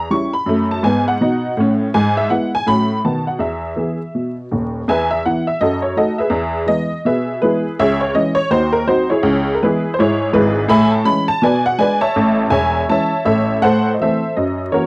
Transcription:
0.10 0.31 G3 soft
0.10 0.31 C#4 soft
0.10 0.32 E4 soft
0.10 0.30 C#6 medium
0.33 0.65 B5 medium
0.46 0.76 F#2 medium
0.46 0.78 A3 medium
0.71 0.83 A5 medium
0.83 1.13 G#2 medium
0.83 1.15 B3 medium
0.83 1.03 G#5 medium
1.08 1.70 F#5 medium
1.21 1.50 B2 medium
1.21 1.51 D#4 medium
1.57 1.87 A2 medium
1.57 1.89 C#4 medium
1.94 2.26 G#2 medium
1.94 2.13 G#5 loud
2.17 2.29 E5 medium
2.30 2.50 G#3 medium
2.30 2.51 B3 medium
2.30 2.51 E4 medium
2.30 2.50 F#5 medium
2.55 2.66 G#5 loud
2.67 2.98 A2 medium
2.67 2.87 F#3 soft
2.67 2.88 C#4 soft
2.67 2.88 F#4 soft
2.67 2.99 B5 loud
3.04 3.36 B2 medium
3.04 3.24 D#3 soft
3.04 3.25 B3 soft
3.04 3.25 F#4 soft
3.04 3.24 A5 medium
3.27 3.39 F#5 medium
3.39 3.71 E2 medium
3.39 4.34 E5 medium
3.76 3.97 E3 soft
3.76 3.97 B3 soft
3.76 3.97 G#4 soft
4.15 4.45 B2 soft
4.51 4.81 D#1 medium
4.51 4.80 D#2 medium
4.88 5.19 E2 medium
4.88 5.10 B4 medium
4.88 5.09 E5 medium
4.88 5.07 G#5 loud
5.11 5.22 E5 medium
5.26 5.45 E3 soft
5.26 5.45 B3 medium
5.26 5.45 E4 soft
5.26 5.44 F#5 medium
5.47 5.59 E5 medium
5.61 5.92 F#2 medium
5.61 5.82 F#4 medium
5.61 5.82 A4 medium
5.61 5.80 D#5 medium
5.82 5.94 C#5 medium
5.96 6.16 A3 soft
5.96 6.17 D#4 soft
5.96 6.18 F#4 medium
5.96 6.18 A4 medium
5.96 6.16 D#5 medium
6.18 6.67 G#4 medium
6.18 6.66 B4 medium
6.18 6.62 E5 medium
6.30 6.62 E2 medium
6.66 6.87 E3 soft
6.66 6.88 G#3 soft
6.66 6.88 B3 soft
6.66 7.00 D#5 medium
7.05 7.36 B2 medium
7.05 7.40 G#4 medium
7.05 7.40 B4 medium
7.05 7.37 E5 medium
7.42 7.62 E3 soft
7.42 7.63 G#3 medium
7.42 7.63 B3 soft
7.42 7.77 E4 medium
7.42 7.77 G#4 medium
7.42 7.73 B4 medium
7.79 8.10 C#2 medium
7.79 8.01 G#4 medium
7.79 7.99 C#5 medium
7.79 7.98 E5 loud
8.01 8.13 C#5 medium
8.15 8.35 E3 medium
8.15 8.35 G#3 soft
8.15 8.35 C#4 medium
8.15 8.34 D#5 medium
8.35 8.48 C#5 loud
8.50 8.82 D#2 medium
8.50 8.73 D#4 medium
8.50 8.73 F#4 medium
8.50 8.71 C5 loud
8.72 8.85 A#4 medium
8.87 9.07 F#3 soft
8.87 9.08 C4 soft
8.87 9.09 D#4 medium
8.87 9.09 F#4 medium
8.87 9.07 C5 medium
9.10 9.53 E4 medium
9.10 9.53 G#4 medium
9.10 9.49 C#5 medium
9.23 9.55 C#2 medium
9.55 9.61 A#4 medium
9.62 9.83 E3 medium
9.62 9.82 G#3 medium
9.62 9.82 B3 soft
9.62 9.92 E4 medium
9.62 9.92 G#4 medium
9.62 9.89 B4 medium
9.94 9.99 C5 medium
9.99 10.30 G#2 medium
9.99 10.33 E4 medium
9.99 10.33 G#4 medium
9.99 10.30 C#5 medium
10.33 10.63 G#1 medium
10.33 10.63 G#2 medium
10.33 10.69 E4 medium
10.33 10.68 G#4 medium
10.33 10.65 B4 medium
10.68 11.00 A2 loud
10.68 10.92 E5 loud
10.68 10.91 G#5 loud
10.68 10.89 B5 loud
10.91 11.04 A5 medium
11.05 11.25 E3 soft
11.05 11.26 G#3 medium
11.05 11.26 C#4 medium
11.05 11.25 B5 loud
11.28 11.41 A5 loud
11.42 11.74 B2 medium
11.42 11.65 B4 medium
11.42 11.65 D5 medium
11.42 11.63 G#5 loud
11.66 11.78 F#5 loud
11.78 11.99 G#3 medium
11.78 11.99 D4 medium
11.78 12.01 B4 medium
11.78 12.01 D5 medium
11.78 11.99 G#5 loud
12.01 12.44 C#5 medium
12.01 12.44 E5 medium
12.01 12.40 A5 loud
12.16 12.46 A1 medium
12.16 12.46 A2 medium
12.46 12.81 E2 medium
12.46 12.53 A5 medium
12.50 12.81 E1 medium
12.50 12.87 C#5 medium
12.50 12.87 E5 medium
12.50 12.83 G#5 loud
12.89 13.10 E3 medium
12.89 13.09 G#3 soft
12.89 13.10 C#4 soft
12.89 13.25 C#5 medium
12.89 13.24 E5 medium
12.89 13.21 A5 loud
13.25 13.55 A1 medium
13.25 13.55 A2 medium
13.25 13.61 A4 medium
13.25 13.61 C#5 medium
13.25 13.57 E5 medium
13.62 13.93 A2 medium
13.62 13.92 A4 medium
13.62 13.93 C5 medium
13.62 13.89 F#5 loud
13.94 13.99 D#5 soft
14.00 14.20 E3 soft
14.00 14.21 A3 medium
14.00 14.21 C4 soft
14.00 14.35 A4 medium
14.00 14.35 C5 medium
14.00 14.32 E5 medium
14.36 14.68 F#2 medium
14.36 14.67 D#5 medium
14.72 14.86 E3 soft
14.72 14.86 A#3 soft
14.72 14.86 C#4 soft
14.72 14.86 F#4 medium
14.72 14.86 A#4 medium
14.72 14.86 C#5 medium

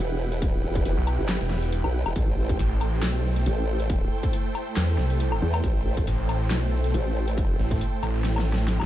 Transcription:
0.00 0.62 E1 medium
0.00 2.12 E4 medium
0.00 2.15 E4 medium
0.00 3.08 G4 medium
0.00 2.12 B4 medium
0.00 2.16 B4 medium
0.00 2.12 F#5 medium
0.00 8.86 G5 medium
0.32 closed hi-hat medium
0.42 kick loud
0.42 closed hi-hat medium
0.64 0.84 E1 loud
0.75 kick loud
0.75 closed hi-hat medium
0.85 0.95 E1 loud
0.85 closed hi-hat medium
0.97 1.17 B1 loud
1.07 closed hi-hat medium
1.07 low woodblock medium
1.19 1.39 G1 loud
1.29 snare loud
1.29 clap medium
1.29 closed hi-hat medium
1.41 1.82 E1 loud
1.51 snare medium
1.62 closed hi-hat medium
1.72 closed hi-hat medium
1.84 2.04 B1 loud
1.84 low woodblock medium
2.06 2.14 E1 medium
2.06 closed hi-hat soft
2.06 low woodblock medium
2.16 2.36 A1 loud
2.16 8.86 A3 medium
2.16 8.86 E4 medium
2.16 8.86 A4 medium
2.16 8.86 C5 medium
2.16 kick loud
2.16 closed hi-hat medium
2.34 2.58 A1 loud
2.34 8.86 A4 medium
2.49 kick loud
2.49 closed hi-hat medium
2.54 8.86 C5 medium
2.59 3.01 A1 loud
2.59 closed hi-hat medium
2.81 closed hi-hat medium
2.81 low woodblock medium
3.03 3.45 B1 loud
3.03 snare loud
3.03 clap medium
3.03 closed hi-hat medium
3.16 8.86 G5 medium
3.36 closed hi-hat medium
3.46 4.10 A1 medium
3.46 closed hi-hat medium
3.80 closed hi-hat soft
3.90 kick loud
3.90 closed hi-hat medium
4.23 kick loud
4.23 closed hi-hat medium
4.33 closed hi-hat medium
4.55 closed hi-hat medium
4.55 low woodblock medium
4.77 4.97 E2 loud
4.77 snare loud
4.77 clap medium
4.77 closed hi-hat medium
4.98 5.40 C2 loud
4.98 snare medium
5.10 closed hi-hat medium
5.20 closed hi-hat medium
5.32 low woodblock medium
5.42 5.62 E2 loud
5.54 closed hi-hat medium
5.54 low woodblock medium
5.64 5.84 A1 loud
5.64 kick loud
5.64 closed hi-hat medium
5.85 6.06 A1 loud
5.97 kick loud
5.97 closed hi-hat medium
6.07 6.49 A1 medium
6.07 closed hi-hat medium
6.29 closed hi-hat medium
6.29 low woodblock medium
6.51 6.93 B1 medium
6.51 snare loud
6.51 clap medium
6.51 closed hi-hat medium
6.84 closed hi-hat medium
6.94 7.58 A1 loud
6.94 closed hi-hat medium
7.28 closed hi-hat medium
7.38 kick loud
7.38 closed hi-hat medium
7.59 7.79 A1 loud
7.71 kick loud
7.71 closed hi-hat medium
7.81 closed hi-hat medium
8.03 8.86 A1 loud
8.03 closed hi-hat medium
8.03 low woodblock medium
8.24 snare medium
8.24 closed hi-hat medium
8.36 snare medium
8.36 low woodblock medium
8.54 snare medium
8.58 closed hi-hat medium
8.68 snare medium
8.68 closed hi-hat medium
8.80 kick medium
8.80 snare medium
8.80 low woodblock medium

